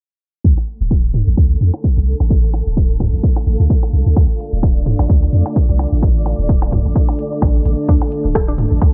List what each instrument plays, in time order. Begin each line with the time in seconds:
0.44 sub bass D2, synth texture A3 A4, ambient pad D4, kick
0.58 percussion blips
0.68 ambient pad A4, closed hi-hat
0.81 sub bass D1
0.91 kick, percussion blips
1.12 ambient pad F5, closed hi-hat, mid tom
1.27 sub bass A1
1.37 sub bass D2, kick, percussion blips
1.61 sub bass F2, closed hi-hat
1.74 percussion blips
1.84 kick
1.97 sub bass C2
2.07 closed hi-hat
2.20 sub bass A1, percussion blips
2.30 kick
2.54 closed hi-hat, percussion blips
2.67 sub bass D1
2.77 kick
3.00 kick, closed hi-hat, mid tom, percussion blips
3.13 sub bass A1
3.23 kick
3.36 percussion blips
3.47 sub bass A1, closed hi-hat
3.60 sub bass D2
3.70 kick
3.83 percussion blips
3.93 sub bass C2, closed hi-hat
4.06 sub bass D2
4.16 sub bass D2, synth texture D5, kick, percussion blips
4.40 closed hi-hat
4.53 sub bass D1
4.63 kick, percussion blips
4.86 closed hi-hat, mid tom
4.99 sub bass A1, percussion blips
5.10 sub bass D2, kick
5.33 sub bass F2, closed hi-hat
5.46 percussion blips
5.56 kick
5.69 sub bass C2
5.79 closed hi-hat, percussion blips
5.92 sub bass A1
6.03 kick
6.26 closed hi-hat, percussion blips
6.39 sub bass D1
6.49 kick
6.62 percussion blips
6.72 kick, closed hi-hat, mid tom
6.85 sub bass A1
6.96 kick
7.09 percussion blips
7.19 closed hi-hat
7.42 sub bass A1, kick, percussion blips
7.65 sub bass A1, closed hi-hat
7.89 sub bass D2, synth arpeggio sound D4, synth texture A4, kick
8.02 percussion blips
8.12 closed hi-hat
8.25 sub bass D1
8.35 synth arpeggio sound A4, kick, cross-stick, percussion blips
8.48 synth arpeggio sound D4
8.58 closed hi-hat, mid tom
8.71 sub bass A1
8.82 sub bass D2, kick, percussion blips